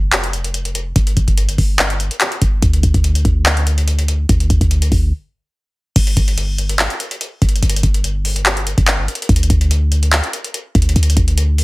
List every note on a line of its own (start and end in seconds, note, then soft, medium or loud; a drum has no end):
0.00 0.92 F1 loud
0.13 clap loud
0.13 closed hi-hat medium
0.24 closed hi-hat medium
0.33 closed hi-hat medium
0.44 closed hi-hat medium
0.54 closed hi-hat medium
0.65 closed hi-hat medium
0.75 closed hi-hat medium
0.96 1.16 G1 loud
0.96 kick loud
0.96 closed hi-hat medium
1.07 closed hi-hat medium
1.17 1.57 G1 loud
1.17 kick medium
1.17 closed hi-hat medium
1.28 kick medium
1.28 closed hi-hat medium
1.38 closed hi-hat medium
1.49 closed hi-hat medium
1.58 2.09 G1 loud
1.58 kick medium
1.58 open hi-hat medium
1.79 clap loud
1.79 closed hi-hat medium
1.90 closed hi-hat medium
2.00 closed hi-hat medium
2.11 closed hi-hat medium
2.21 clap loud
2.21 closed hi-hat medium
2.32 closed hi-hat medium
2.42 2.62 G1 loud
2.42 kick medium
2.42 closed hi-hat medium
2.62 2.82 D2 loud
2.62 kick loud
2.62 closed hi-hat medium
2.73 closed hi-hat medium
2.83 2.94 D2 loud
2.83 kick medium
2.83 closed hi-hat medium
2.94 3.24 D2 loud
2.94 kick medium
2.94 closed hi-hat medium
3.04 closed hi-hat medium
3.15 closed hi-hat medium
3.25 4.25 D2 loud
3.25 kick medium
3.25 closed hi-hat soft
3.46 clap loud
3.46 closed hi-hat medium
3.57 closed hi-hat medium
3.67 closed hi-hat medium
3.78 closed hi-hat medium
3.88 closed hi-hat medium
3.99 closed hi-hat medium
4.08 closed hi-hat medium
4.29 4.49 D2 loud
4.29 kick loud
4.29 closed hi-hat medium
4.40 closed hi-hat medium
4.50 4.61 D2 loud
4.50 kick medium
4.50 closed hi-hat medium
4.61 4.90 D2 loud
4.61 kick medium
4.61 closed hi-hat medium
4.71 closed hi-hat medium
4.82 closed hi-hat medium
4.92 5.12 D2 loud
4.92 kick medium
4.92 open hi-hat medium
5.96 6.16 G1 loud
5.96 kick loud
5.96 closed hi-hat medium
5.96 crash loud
6.07 closed hi-hat medium
6.17 6.87 G1 loud
6.17 kick loud
6.17 closed hi-hat medium
6.28 closed hi-hat medium
6.38 closed hi-hat medium
6.58 closed hi-hat medium
6.69 closed hi-hat medium
6.79 clap loud
6.79 closed hi-hat medium
6.90 closed hi-hat medium
7.00 closed hi-hat medium
7.11 closed hi-hat medium
7.21 closed hi-hat medium
7.42 7.62 G1 loud
7.42 kick medium
7.42 closed hi-hat medium
7.49 closed hi-hat medium
7.56 closed hi-hat medium
7.63 7.83 G1 loud
7.63 closed hi-hat medium
7.70 closed hi-hat medium
7.76 closed hi-hat medium
7.83 8.74 G1 loud
7.83 kick loud
7.83 closed hi-hat medium
7.94 closed hi-hat medium
8.04 closed hi-hat medium
8.25 open hi-hat medium
8.36 closed hi-hat medium
8.46 clap loud
8.46 closed hi-hat medium
8.57 closed hi-hat medium
8.67 closed hi-hat medium
8.78 9.07 G1 loud
8.78 kick medium
8.78 closed hi-hat medium
8.88 clap loud
8.88 closed hi-hat medium
9.08 closed hi-hat medium
9.15 closed hi-hat medium
9.22 closed hi-hat medium
9.29 9.49 D2 loud
9.29 kick loud
9.29 closed hi-hat medium
9.36 closed hi-hat medium
9.43 closed hi-hat medium
9.50 10.21 D2 loud
9.50 kick medium
9.50 closed hi-hat medium
9.61 closed hi-hat medium
9.71 closed hi-hat medium
9.92 closed hi-hat medium
10.03 closed hi-hat medium
10.13 clap loud
10.13 closed hi-hat medium
10.24 closed hi-hat medium
10.33 closed hi-hat medium
10.44 closed hi-hat medium
10.54 closed hi-hat medium
10.75 10.95 D2 loud
10.75 kick medium
10.75 closed hi-hat medium
10.82 closed hi-hat medium
10.89 closed hi-hat medium
10.96 11.16 D2 loud
10.96 closed hi-hat medium
11.03 closed hi-hat medium
11.10 closed hi-hat medium
11.17 11.64 D2 loud
11.17 kick medium
11.17 closed hi-hat medium
11.28 closed hi-hat medium
11.38 closed hi-hat medium
11.58 open hi-hat medium